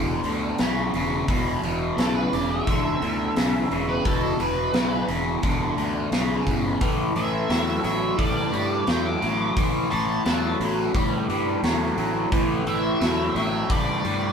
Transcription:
Already playing: fingered electric bass E1, overdriven electric guitar E2 D3
0.24 fingered electric bass D2, overdriven electric guitar E2 D3, open hi-hat
0.58 fingered electric bass B1, overdriven electric guitar E2 C#3, snare, open hi-hat
0.94 fingered electric bass E1, overdriven electric guitar E2 C#3, open hi-hat
1.28 fingered electric bass E1, overdriven electric guitar E2 B2, kick, open hi-hat
1.63 fingered electric bass E1, overdriven electric guitar E2 B2, open hi-hat
1.98 fingered electric bass B1, overdriven electric guitar E2 C#3, lead electric guitar A4, snare, open hi-hat
2.15 lead electric guitar B4
2.33 fingered electric bass E1, overdriven electric guitar E2 C#3, lead electric guitar D5, open hi-hat
2.51 lead electric guitar E5
2.67 fingered electric bass E1, overdriven electric guitar E2 D3, kick, open hi-hat
3.01 fingered electric bass D2, overdriven electric guitar E2 D3, open hi-hat
3.36 fingered electric bass B1, overdriven electric guitar E2 C#3, snare, open hi-hat
3.71 fingered electric bass E1, overdriven electric guitar E2 C#3, open hi-hat
3.89 lead electric guitar B4
4.05 fingered electric bass E1, overdriven electric guitar E2 B2, lead electric guitar A4, kick, open hi-hat
4.39 fingered electric bass E1, overdriven electric guitar E2 B2, lead electric guitar B4, open hi-hat
4.73 fingered electric bass B1, overdriven electric guitar E2 C#3, snare, open hi-hat
5.08 fingered electric bass E1, overdriven electric guitar E2 C#3, open hi-hat
5.42 fingered electric bass E1, overdriven electric guitar E2 D3, kick, open hi-hat
5.77 fingered electric bass D2, overdriven electric guitar E2 D3, open hi-hat
6.11 fingered electric bass B1, overdriven electric guitar E2 C#3, snare, open hi-hat
6.47 fingered electric bass G1, overdriven electric guitar E2 C#3, kick, open hi-hat
6.81 fingered electric bass A1, overdriven electric guitar A2 E3, kick, open hi-hat
7.15 fingered electric bass A1, overdriven electric guitar A2 E3, lead electric guitar E5, open hi-hat
7.49 fingered electric bass E2, overdriven electric guitar A2 F#3, snare, open hi-hat
7.83 fingered electric bass A1, overdriven electric guitar A2 F#3, lead electric guitar E5, open hi-hat
8.17 fingered electric bass A1, overdriven electric guitar A2 G3, lead electric guitar D5, kick, open hi-hat
8.52 fingered electric bass G2, overdriven electric guitar A2 G3, open hi-hat
8.87 fingered electric bass E2, overdriven electric guitar A2 F#3, lead electric guitar G5, snare, open hi-hat
9.05 lead electric guitar D6
9.21 fingered electric bass A1, overdriven electric guitar A2 F#3, open hi-hat
9.57 fingered electric bass A1, overdriven electric guitar A2 E3, kick, open hi-hat
9.90 fingered electric bass A1, overdriven electric guitar A2 E3, lead electric guitar A5, open hi-hat
10.25 fingered electric bass E2, overdriven electric guitar A2 F#3, snare, open hi-hat
10.60 fingered electric bass A1, overdriven electric guitar A2 F#3, open hi-hat
10.94 fingered electric bass A1, overdriven electric guitar A2 G3, kick, open hi-hat
11.28 fingered electric bass G2, overdriven electric guitar A2 G3, open hi-hat
11.63 fingered electric bass E2, overdriven electric guitar A2 F#3, snare, open hi-hat
11.97 fingered electric bass A1, overdriven electric guitar A2 F#3, open hi-hat
12.32 fingered electric bass A1, overdriven electric guitar A2 E3, tonewheel organ B4 C5 G5, kick, open hi-hat
12.65 fingered electric bass A1, overdriven electric guitar A2 E3, lead electric guitar E5, open hi-hat
13.01 fingered electric bass E2, overdriven electric guitar A2 F#3, snare, open hi-hat
13.35 fingered electric bass A1, overdriven electric guitar A2 F#3, lead electric guitar E5, open hi-hat
13.69 fingered electric bass A1, overdriven electric guitar A2 G3, lead electric guitar D5, kick, open hi-hat
14.04 fingered electric bass G2, overdriven electric guitar A2 G3, open hi-hat

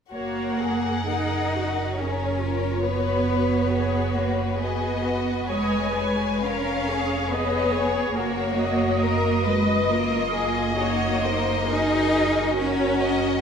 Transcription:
0.12 double bass section F#1, cello section A#3, violin section F#4 F#5, viola section A#4 C#5
0.60 viola section G#4, violin section G#4
1.09 cello section D#4, viola section G#4 A#4, violin section A#4
1.55 viola section F#4, violin section F#4
1.97 cello section C#4, violin section G#4 C#5, viola section A#4
2.41 viola section F4, violin section A#4
2.84 cello section B3, viola section F#4 B4, violin section B4
3.72 violin section F#4, viola section G#4 B4
4.17 cello section A#3, viola section F#4
4.60 cello section B3, viola section F#4, violin section G#4 D#5
5.04 violin section F#4, viola section B4
5.49 double bass section F1, cello section G#3, violin section C#5 G#5, viola section D#5
5.96 violin section B4, viola section C#5
6.44 cello section C#4, violin section A#4 F5, viola section A#4 C#5
6.89 violin section G#4, viola section G#4
7.31 cello section B3, violin section B4 C#5, viola section D#5
7.73 violin section G#4, viola section C#5
8.15 double bass section F#1, cello section A#3, violin section F#4 C#5, viola section F#4 A#4
8.59 viola section D#5
9.02 violin section A#4
9.46 cello section G#3, violin section B4 D#5
9.91 cello section A#3, viola section F4, violin section A#4
10.35 violin section G#4
10.77 cello section A#3, viola section D#4 C#5, violin section F#4
11.23 violin section A#4, viola section C5
11.69 cello section D#4, viola section F#4 A#4, violin section G#4
12.56 cello section C#4, violin section F#4 C#5, viola section A#4
13.02 violin section D#5

